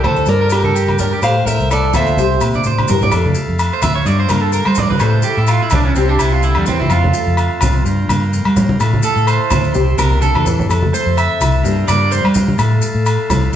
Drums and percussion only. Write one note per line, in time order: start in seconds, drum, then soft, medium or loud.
0.04 high conga medium
0.04 low conga medium
0.04 low agogo medium
0.16 maracas soft
0.26 maracas medium
0.50 low agogo medium
0.50 maracas medium
0.64 high conga medium
0.76 maracas medium
0.88 high conga medium
0.88 low agogo medium
0.99 low conga medium
0.99 maracas medium
1.22 low agogo medium
1.22 maracas medium
1.47 low conga medium
1.47 maracas loud
1.60 maracas soft
1.71 low agogo medium
1.71 maracas medium
1.94 high conga medium
1.94 low conga medium
1.94 low agogo medium
1.94 maracas medium
2.06 maracas soft
2.17 high conga medium
2.17 low conga medium
2.17 maracas medium
2.41 low agogo medium
2.41 maracas medium
2.54 high conga soft
2.54 maracas soft
2.64 high conga medium
2.64 maracas medium
2.78 high conga medium
2.78 low agogo medium
2.88 low conga medium
2.88 maracas medium
3.02 low conga medium
3.02 maracas soft
3.12 low agogo medium
3.12 maracas medium
3.26 high conga medium
3.35 maracas medium
3.59 low agogo medium
3.59 maracas medium
3.82 high conga medium
3.82 low conga medium
3.82 low agogo medium
3.82 maracas loud
4.06 maracas medium
4.29 high conga medium
4.29 low agogo medium
4.29 maracas medium
4.52 maracas medium
4.65 low agogo medium
4.75 low conga medium
4.75 maracas medium
4.91 high conga medium
5.00 low agogo medium
5.00 maracas medium
5.22 maracas medium
5.47 low agogo medium
5.47 maracas medium
5.70 high conga medium
5.70 low conga medium
5.70 low agogo medium
5.70 maracas medium
5.96 maracas medium
6.19 low agogo medium
6.19 maracas medium
6.43 maracas medium
6.55 low agogo medium
6.66 low conga medium
6.66 maracas medium
6.81 high conga medium
6.90 low agogo medium
6.90 maracas medium
7.04 high conga medium
7.14 maracas medium
7.37 low agogo medium
7.37 maracas medium
7.61 high conga medium
7.61 low conga medium
7.61 low agogo medium
7.61 maracas medium
7.86 maracas medium
8.09 high conga medium
8.09 low agogo medium
8.09 maracas medium
8.33 maracas medium
8.45 low agogo medium
8.56 low conga medium
8.56 maracas loud
8.69 high conga medium
8.80 low agogo medium
8.80 maracas medium
8.93 high conga medium
9.03 maracas loud
9.17 maracas soft
9.27 low agogo medium
9.27 maracas medium
9.51 high conga medium
9.51 low conga medium
9.51 low agogo medium
9.51 maracas loud
9.64 maracas soft
9.74 low conga medium
9.74 maracas medium
9.98 high conga medium
9.98 low agogo medium
9.98 maracas medium
10.11 high conga medium
10.22 high conga medium
10.22 maracas medium
10.35 high conga medium
10.35 low agogo medium
10.46 low conga medium
10.46 maracas loud
10.59 low conga medium
10.59 maracas soft
10.70 low agogo medium
10.70 maracas medium
10.82 high conga medium
10.94 maracas loud
11.18 low agogo medium
11.18 maracas medium
11.41 high conga medium
11.41 low agogo medium
11.41 maracas loud
11.65 maracas medium
11.88 high conga medium
11.88 low agogo medium
11.88 maracas medium
12.11 maracas medium
12.25 low agogo medium
12.34 low conga medium
12.34 maracas loud
12.48 high conga medium
12.59 low agogo medium
12.59 maracas medium
12.82 maracas medium
13.06 low agogo medium
13.06 maracas medium
13.30 high conga medium
13.30 low conga medium
13.30 low agogo medium
13.30 maracas loud